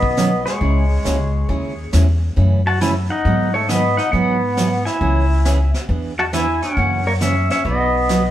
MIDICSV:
0, 0, Header, 1, 6, 480
1, 0, Start_track
1, 0, Key_signature, 4, "major"
1, 0, Tempo, 440205
1, 660, Time_signature, 4, 2, 24, 8
1, 9058, End_track
2, 0, Start_track
2, 0, Title_t, "Pedal steel guitar"
2, 0, Program_c, 0, 26
2, 0, Note_on_c, 0, 71, 67
2, 0, Note_on_c, 0, 75, 88
2, 467, Note_off_c, 0, 71, 0
2, 498, Note_on_c, 0, 73, 82
2, 522, Note_on_c, 0, 68, 67
2, 524, Note_off_c, 0, 75, 0
2, 2055, Note_off_c, 0, 73, 0
2, 2067, Note_off_c, 0, 68, 0
2, 2911, Note_on_c, 0, 81, 91
2, 2922, Note_on_c, 0, 78, 68
2, 3061, Note_off_c, 0, 78, 0
2, 3071, Note_off_c, 0, 81, 0
2, 3074, Note_on_c, 0, 80, 100
2, 3082, Note_on_c, 0, 76, 74
2, 3158, Note_off_c, 0, 80, 0
2, 3166, Note_off_c, 0, 76, 0
2, 3385, Note_on_c, 0, 78, 84
2, 3399, Note_on_c, 0, 75, 69
2, 3837, Note_off_c, 0, 75, 0
2, 3860, Note_on_c, 0, 73, 77
2, 3876, Note_on_c, 0, 69, 62
2, 3877, Note_off_c, 0, 78, 0
2, 4009, Note_off_c, 0, 73, 0
2, 4018, Note_off_c, 0, 69, 0
2, 4020, Note_on_c, 0, 75, 85
2, 4036, Note_on_c, 0, 71, 66
2, 4326, Note_off_c, 0, 71, 0
2, 4332, Note_on_c, 0, 78, 87
2, 4337, Note_off_c, 0, 75, 0
2, 4350, Note_on_c, 0, 75, 66
2, 4477, Note_off_c, 0, 78, 0
2, 4490, Note_on_c, 0, 78, 102
2, 4495, Note_off_c, 0, 75, 0
2, 4510, Note_on_c, 0, 71, 76
2, 5262, Note_off_c, 0, 71, 0
2, 5293, Note_on_c, 0, 80, 79
2, 5305, Note_on_c, 0, 76, 63
2, 5320, Note_off_c, 0, 78, 0
2, 6214, Note_off_c, 0, 80, 0
2, 6220, Note_off_c, 0, 76, 0
2, 6751, Note_on_c, 0, 78, 75
2, 6756, Note_on_c, 0, 81, 84
2, 6806, Note_off_c, 0, 78, 0
2, 6811, Note_off_c, 0, 81, 0
2, 6910, Note_on_c, 0, 76, 77
2, 6913, Note_on_c, 0, 80, 104
2, 7204, Note_off_c, 0, 76, 0
2, 7224, Note_on_c, 0, 73, 72
2, 7232, Note_on_c, 0, 78, 86
2, 7236, Note_off_c, 0, 80, 0
2, 7671, Note_off_c, 0, 73, 0
2, 7710, Note_on_c, 0, 70, 65
2, 7710, Note_on_c, 0, 73, 90
2, 7720, Note_off_c, 0, 78, 0
2, 7762, Note_off_c, 0, 73, 0
2, 7765, Note_off_c, 0, 70, 0
2, 7870, Note_on_c, 0, 73, 63
2, 7875, Note_on_c, 0, 76, 86
2, 8165, Note_off_c, 0, 73, 0
2, 8178, Note_off_c, 0, 76, 0
2, 8193, Note_on_c, 0, 73, 69
2, 8193, Note_on_c, 0, 76, 83
2, 8337, Note_off_c, 0, 76, 0
2, 8338, Note_off_c, 0, 73, 0
2, 8347, Note_on_c, 0, 75, 97
2, 8355, Note_on_c, 0, 71, 80
2, 9058, Note_off_c, 0, 71, 0
2, 9058, Note_off_c, 0, 75, 0
2, 9058, End_track
3, 0, Start_track
3, 0, Title_t, "Clarinet"
3, 0, Program_c, 1, 71
3, 0, Note_on_c, 1, 59, 79
3, 450, Note_off_c, 1, 59, 0
3, 486, Note_on_c, 1, 56, 74
3, 2050, Note_off_c, 1, 56, 0
3, 2904, Note_on_c, 1, 66, 77
3, 3051, Note_off_c, 1, 66, 0
3, 3062, Note_on_c, 1, 64, 84
3, 3205, Note_off_c, 1, 64, 0
3, 3379, Note_on_c, 1, 63, 89
3, 3826, Note_off_c, 1, 63, 0
3, 3856, Note_on_c, 1, 57, 71
3, 4007, Note_off_c, 1, 57, 0
3, 4021, Note_on_c, 1, 59, 71
3, 4318, Note_off_c, 1, 59, 0
3, 4337, Note_on_c, 1, 63, 70
3, 4482, Note_off_c, 1, 63, 0
3, 4489, Note_on_c, 1, 59, 87
3, 5251, Note_off_c, 1, 59, 0
3, 5296, Note_on_c, 1, 64, 80
3, 6215, Note_off_c, 1, 64, 0
3, 6754, Note_on_c, 1, 66, 82
3, 6823, Note_off_c, 1, 66, 0
3, 6917, Note_on_c, 1, 64, 84
3, 7207, Note_off_c, 1, 64, 0
3, 7231, Note_on_c, 1, 61, 83
3, 7674, Note_off_c, 1, 61, 0
3, 7715, Note_on_c, 1, 58, 74
3, 7785, Note_off_c, 1, 58, 0
3, 7870, Note_on_c, 1, 61, 66
3, 8164, Note_off_c, 1, 61, 0
3, 8186, Note_on_c, 1, 61, 73
3, 8333, Note_off_c, 1, 61, 0
3, 8351, Note_on_c, 1, 59, 80
3, 9058, Note_off_c, 1, 59, 0
3, 9058, End_track
4, 0, Start_track
4, 0, Title_t, "Steel-string acoustic guitar"
4, 0, Program_c, 2, 25
4, 182, Note_on_c, 2, 47, 75
4, 184, Note_on_c, 2, 51, 70
4, 187, Note_on_c, 2, 54, 82
4, 191, Note_on_c, 2, 61, 82
4, 194, Note_on_c, 2, 63, 82
4, 311, Note_off_c, 2, 47, 0
4, 312, Note_off_c, 2, 51, 0
4, 314, Note_off_c, 2, 54, 0
4, 316, Note_off_c, 2, 61, 0
4, 317, Note_off_c, 2, 63, 0
4, 663, Note_on_c, 2, 49, 52
4, 667, Note_on_c, 2, 56, 47
4, 671, Note_on_c, 2, 61, 50
4, 673, Note_on_c, 2, 64, 57
4, 674, Note_on_c, 2, 68, 57
4, 908, Note_off_c, 2, 49, 0
4, 909, Note_off_c, 2, 56, 0
4, 911, Note_off_c, 2, 61, 0
4, 912, Note_off_c, 2, 64, 0
4, 913, Note_off_c, 2, 68, 0
4, 1139, Note_on_c, 2, 49, 66
4, 1143, Note_on_c, 2, 56, 64
4, 1146, Note_on_c, 2, 61, 69
4, 1150, Note_on_c, 2, 64, 78
4, 1151, Note_on_c, 2, 68, 68
4, 1270, Note_off_c, 2, 49, 0
4, 1271, Note_off_c, 2, 56, 0
4, 1273, Note_off_c, 2, 61, 0
4, 1275, Note_off_c, 2, 64, 0
4, 1276, Note_off_c, 2, 68, 0
4, 1620, Note_on_c, 2, 49, 53
4, 1622, Note_on_c, 2, 56, 59
4, 1626, Note_on_c, 2, 61, 59
4, 1628, Note_on_c, 2, 64, 54
4, 1630, Note_on_c, 2, 68, 59
4, 1866, Note_off_c, 2, 49, 0
4, 1867, Note_off_c, 2, 56, 0
4, 1869, Note_off_c, 2, 61, 0
4, 1870, Note_off_c, 2, 64, 0
4, 1871, Note_off_c, 2, 68, 0
4, 2099, Note_on_c, 2, 49, 73
4, 2103, Note_on_c, 2, 56, 78
4, 2104, Note_on_c, 2, 61, 73
4, 2109, Note_on_c, 2, 68, 81
4, 2110, Note_on_c, 2, 64, 80
4, 2230, Note_off_c, 2, 49, 0
4, 2232, Note_off_c, 2, 56, 0
4, 2232, Note_off_c, 2, 61, 0
4, 2235, Note_off_c, 2, 64, 0
4, 2235, Note_off_c, 2, 68, 0
4, 2576, Note_on_c, 2, 49, 53
4, 2580, Note_on_c, 2, 52, 48
4, 2583, Note_on_c, 2, 57, 55
4, 2586, Note_on_c, 2, 61, 58
4, 2588, Note_on_c, 2, 66, 60
4, 2824, Note_off_c, 2, 49, 0
4, 2826, Note_off_c, 2, 52, 0
4, 2828, Note_off_c, 2, 57, 0
4, 2829, Note_off_c, 2, 61, 0
4, 2830, Note_off_c, 2, 66, 0
4, 3063, Note_on_c, 2, 49, 66
4, 3064, Note_on_c, 2, 52, 71
4, 3068, Note_on_c, 2, 57, 68
4, 3073, Note_on_c, 2, 61, 73
4, 3076, Note_on_c, 2, 66, 79
4, 3192, Note_off_c, 2, 49, 0
4, 3193, Note_off_c, 2, 52, 0
4, 3194, Note_off_c, 2, 57, 0
4, 3197, Note_off_c, 2, 61, 0
4, 3198, Note_off_c, 2, 66, 0
4, 3547, Note_on_c, 2, 51, 57
4, 3553, Note_on_c, 2, 54, 61
4, 3555, Note_on_c, 2, 59, 54
4, 3556, Note_on_c, 2, 63, 54
4, 3557, Note_on_c, 2, 68, 63
4, 3790, Note_off_c, 2, 51, 0
4, 3793, Note_off_c, 2, 54, 0
4, 3794, Note_off_c, 2, 59, 0
4, 3795, Note_off_c, 2, 63, 0
4, 3795, Note_off_c, 2, 68, 0
4, 4020, Note_on_c, 2, 51, 73
4, 4025, Note_on_c, 2, 54, 77
4, 4028, Note_on_c, 2, 59, 71
4, 4031, Note_on_c, 2, 63, 78
4, 4031, Note_on_c, 2, 68, 77
4, 4151, Note_off_c, 2, 51, 0
4, 4153, Note_off_c, 2, 54, 0
4, 4155, Note_off_c, 2, 59, 0
4, 4156, Note_off_c, 2, 63, 0
4, 4156, Note_off_c, 2, 68, 0
4, 4504, Note_on_c, 2, 52, 45
4, 4508, Note_on_c, 2, 54, 57
4, 4510, Note_on_c, 2, 66, 57
4, 4512, Note_on_c, 2, 59, 59
4, 4515, Note_on_c, 2, 68, 57
4, 4749, Note_off_c, 2, 52, 0
4, 4751, Note_off_c, 2, 54, 0
4, 4752, Note_off_c, 2, 66, 0
4, 4753, Note_off_c, 2, 59, 0
4, 4755, Note_off_c, 2, 68, 0
4, 4987, Note_on_c, 2, 52, 69
4, 4991, Note_on_c, 2, 54, 69
4, 4992, Note_on_c, 2, 59, 70
4, 4997, Note_on_c, 2, 66, 75
4, 4997, Note_on_c, 2, 68, 71
4, 5115, Note_off_c, 2, 52, 0
4, 5117, Note_off_c, 2, 54, 0
4, 5117, Note_off_c, 2, 59, 0
4, 5120, Note_off_c, 2, 66, 0
4, 5120, Note_off_c, 2, 68, 0
4, 5464, Note_on_c, 2, 49, 52
4, 5467, Note_on_c, 2, 52, 51
4, 5470, Note_on_c, 2, 59, 49
4, 5471, Note_on_c, 2, 61, 59
4, 5472, Note_on_c, 2, 68, 66
4, 5709, Note_off_c, 2, 49, 0
4, 5711, Note_off_c, 2, 52, 0
4, 5712, Note_off_c, 2, 59, 0
4, 5713, Note_off_c, 2, 61, 0
4, 5713, Note_off_c, 2, 68, 0
4, 5941, Note_on_c, 2, 49, 71
4, 5948, Note_on_c, 2, 52, 69
4, 5948, Note_on_c, 2, 59, 82
4, 5950, Note_on_c, 2, 61, 83
4, 5953, Note_on_c, 2, 68, 82
4, 6072, Note_off_c, 2, 49, 0
4, 6075, Note_off_c, 2, 52, 0
4, 6076, Note_off_c, 2, 59, 0
4, 6077, Note_off_c, 2, 61, 0
4, 6078, Note_off_c, 2, 68, 0
4, 6423, Note_on_c, 2, 52, 58
4, 6427, Note_on_c, 2, 59, 55
4, 6428, Note_on_c, 2, 62, 52
4, 6435, Note_on_c, 2, 68, 57
4, 6669, Note_off_c, 2, 52, 0
4, 6671, Note_off_c, 2, 59, 0
4, 6672, Note_off_c, 2, 62, 0
4, 6675, Note_off_c, 2, 68, 0
4, 6900, Note_on_c, 2, 52, 78
4, 6902, Note_on_c, 2, 59, 67
4, 6907, Note_on_c, 2, 62, 68
4, 6911, Note_on_c, 2, 68, 76
4, 7032, Note_off_c, 2, 52, 0
4, 7033, Note_off_c, 2, 59, 0
4, 7035, Note_off_c, 2, 62, 0
4, 7037, Note_off_c, 2, 68, 0
4, 7381, Note_on_c, 2, 49, 54
4, 7387, Note_on_c, 2, 52, 52
4, 7388, Note_on_c, 2, 58, 57
4, 7390, Note_on_c, 2, 61, 61
4, 7394, Note_on_c, 2, 66, 58
4, 7628, Note_off_c, 2, 49, 0
4, 7631, Note_off_c, 2, 52, 0
4, 7632, Note_off_c, 2, 58, 0
4, 7633, Note_off_c, 2, 61, 0
4, 7635, Note_off_c, 2, 66, 0
4, 7859, Note_on_c, 2, 49, 68
4, 7862, Note_on_c, 2, 52, 71
4, 7865, Note_on_c, 2, 58, 66
4, 7869, Note_on_c, 2, 61, 72
4, 7869, Note_on_c, 2, 66, 74
4, 7991, Note_off_c, 2, 49, 0
4, 7993, Note_off_c, 2, 52, 0
4, 7995, Note_off_c, 2, 58, 0
4, 7996, Note_off_c, 2, 61, 0
4, 7996, Note_off_c, 2, 66, 0
4, 8340, Note_on_c, 2, 47, 55
4, 8344, Note_on_c, 2, 54, 51
4, 8346, Note_on_c, 2, 59, 51
4, 8350, Note_on_c, 2, 63, 59
4, 8354, Note_on_c, 2, 66, 51
4, 8588, Note_off_c, 2, 47, 0
4, 8589, Note_off_c, 2, 54, 0
4, 8591, Note_off_c, 2, 59, 0
4, 8593, Note_off_c, 2, 63, 0
4, 8595, Note_off_c, 2, 66, 0
4, 8823, Note_on_c, 2, 47, 72
4, 8825, Note_on_c, 2, 54, 70
4, 8826, Note_on_c, 2, 59, 61
4, 8829, Note_on_c, 2, 63, 75
4, 8831, Note_on_c, 2, 66, 80
4, 8953, Note_off_c, 2, 47, 0
4, 8954, Note_off_c, 2, 54, 0
4, 8955, Note_off_c, 2, 59, 0
4, 8956, Note_off_c, 2, 63, 0
4, 8958, Note_off_c, 2, 66, 0
4, 9058, End_track
5, 0, Start_track
5, 0, Title_t, "Upright bass"
5, 0, Program_c, 3, 32
5, 0, Note_on_c, 3, 35, 88
5, 473, Note_off_c, 3, 35, 0
5, 667, Note_on_c, 3, 37, 79
5, 1048, Note_off_c, 3, 37, 0
5, 1147, Note_on_c, 3, 37, 83
5, 1552, Note_off_c, 3, 37, 0
5, 1624, Note_on_c, 3, 39, 80
5, 2030, Note_off_c, 3, 39, 0
5, 2108, Note_on_c, 3, 40, 84
5, 2512, Note_off_c, 3, 40, 0
5, 2583, Note_on_c, 3, 42, 80
5, 3350, Note_off_c, 3, 42, 0
5, 3545, Note_on_c, 3, 44, 84
5, 4312, Note_off_c, 3, 44, 0
5, 4505, Note_on_c, 3, 44, 83
5, 5272, Note_off_c, 3, 44, 0
5, 5462, Note_on_c, 3, 37, 89
5, 6230, Note_off_c, 3, 37, 0
5, 6422, Note_on_c, 3, 40, 85
5, 7190, Note_off_c, 3, 40, 0
5, 7380, Note_on_c, 3, 42, 91
5, 8149, Note_off_c, 3, 42, 0
5, 8339, Note_on_c, 3, 35, 89
5, 9058, Note_off_c, 3, 35, 0
5, 9058, End_track
6, 0, Start_track
6, 0, Title_t, "Drums"
6, 28, Note_on_c, 9, 36, 54
6, 137, Note_off_c, 9, 36, 0
6, 189, Note_on_c, 9, 38, 67
6, 189, Note_on_c, 9, 44, 58
6, 298, Note_off_c, 9, 38, 0
6, 298, Note_off_c, 9, 44, 0
6, 506, Note_on_c, 9, 38, 45
6, 615, Note_off_c, 9, 38, 0
6, 667, Note_on_c, 9, 36, 33
6, 671, Note_on_c, 9, 25, 53
6, 776, Note_off_c, 9, 36, 0
6, 1147, Note_on_c, 9, 38, 62
6, 1147, Note_on_c, 9, 44, 51
6, 1256, Note_off_c, 9, 38, 0
6, 1256, Note_off_c, 9, 44, 0
6, 1626, Note_on_c, 9, 36, 36
6, 1628, Note_off_c, 9, 25, 0
6, 1628, Note_on_c, 9, 25, 56
6, 1735, Note_off_c, 9, 36, 0
6, 2103, Note_on_c, 9, 38, 66
6, 2103, Note_on_c, 9, 44, 61
6, 2213, Note_off_c, 9, 38, 0
6, 2213, Note_off_c, 9, 44, 0
6, 2585, Note_off_c, 9, 25, 0
6, 2585, Note_on_c, 9, 25, 58
6, 2585, Note_on_c, 9, 36, 34
6, 2694, Note_off_c, 9, 36, 0
6, 3066, Note_on_c, 9, 38, 62
6, 3066, Note_on_c, 9, 44, 56
6, 3175, Note_off_c, 9, 38, 0
6, 3175, Note_off_c, 9, 44, 0
6, 3546, Note_on_c, 9, 36, 36
6, 3547, Note_off_c, 9, 25, 0
6, 3547, Note_on_c, 9, 25, 57
6, 3655, Note_off_c, 9, 36, 0
6, 4026, Note_on_c, 9, 38, 60
6, 4026, Note_on_c, 9, 44, 58
6, 4135, Note_off_c, 9, 38, 0
6, 4135, Note_off_c, 9, 44, 0
6, 4344, Note_on_c, 9, 38, 43
6, 4453, Note_off_c, 9, 38, 0
6, 4504, Note_on_c, 9, 36, 35
6, 4505, Note_off_c, 9, 25, 0
6, 4505, Note_on_c, 9, 25, 52
6, 4613, Note_off_c, 9, 36, 0
6, 4984, Note_on_c, 9, 38, 62
6, 4984, Note_on_c, 9, 44, 56
6, 5093, Note_off_c, 9, 38, 0
6, 5093, Note_off_c, 9, 44, 0
6, 5303, Note_on_c, 9, 38, 38
6, 5412, Note_off_c, 9, 38, 0
6, 5462, Note_on_c, 9, 36, 36
6, 5465, Note_off_c, 9, 25, 0
6, 5465, Note_on_c, 9, 25, 48
6, 5571, Note_off_c, 9, 36, 0
6, 5946, Note_on_c, 9, 38, 66
6, 5946, Note_on_c, 9, 44, 58
6, 6055, Note_off_c, 9, 38, 0
6, 6055, Note_off_c, 9, 44, 0
6, 6262, Note_on_c, 9, 38, 40
6, 6371, Note_off_c, 9, 38, 0
6, 6421, Note_on_c, 9, 36, 33
6, 6424, Note_off_c, 9, 25, 0
6, 6424, Note_on_c, 9, 25, 53
6, 6531, Note_off_c, 9, 36, 0
6, 6904, Note_on_c, 9, 38, 70
6, 6904, Note_on_c, 9, 44, 57
6, 7013, Note_off_c, 9, 38, 0
6, 7013, Note_off_c, 9, 44, 0
6, 7222, Note_on_c, 9, 38, 36
6, 7331, Note_off_c, 9, 38, 0
6, 7382, Note_on_c, 9, 36, 34
6, 7384, Note_off_c, 9, 25, 0
6, 7384, Note_on_c, 9, 25, 57
6, 7491, Note_off_c, 9, 36, 0
6, 7861, Note_on_c, 9, 38, 67
6, 7861, Note_on_c, 9, 44, 58
6, 7970, Note_off_c, 9, 38, 0
6, 7970, Note_off_c, 9, 44, 0
6, 8181, Note_on_c, 9, 38, 45
6, 8290, Note_off_c, 9, 38, 0
6, 8341, Note_on_c, 9, 36, 36
6, 8344, Note_off_c, 9, 25, 0
6, 8344, Note_on_c, 9, 25, 56
6, 8450, Note_off_c, 9, 36, 0
6, 8822, Note_on_c, 9, 38, 59
6, 8822, Note_on_c, 9, 44, 52
6, 8931, Note_off_c, 9, 38, 0
6, 8931, Note_off_c, 9, 44, 0
6, 9058, Note_off_c, 9, 25, 0
6, 9058, End_track
0, 0, End_of_file